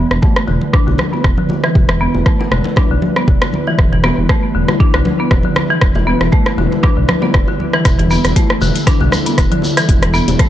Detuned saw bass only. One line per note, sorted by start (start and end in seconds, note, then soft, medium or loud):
0.11 0.19 E1 medium
0.49 0.57 E1 loud
0.88 0.95 B1 medium
1.24 1.33 E1 medium
1.75 2.07 E1 loud
2.15 2.22 E1 medium
2.51 2.60 E1 loud
2.90 2.98 B1 loud
3.28 3.37 E1 medium
3.79 4.10 E1 loud
4.18 4.26 E1 medium
4.55 4.64 E1 loud
4.94 5.02 B1 medium
5.31 5.40 E1 medium
5.82 6.13 E1 loud
6.21 6.28 E1 medium
6.58 6.67 E1 loud
6.97 7.05 B1 medium
7.34 7.43 E1 medium
7.85 8.17 E1 loud
8.25 8.32 E1 medium
8.61 8.70 E1 loud
9.01 9.08 B1 medium
9.38 9.47 E1 loud
9.89 10.20 E1 loud
10.28 10.35 E1 medium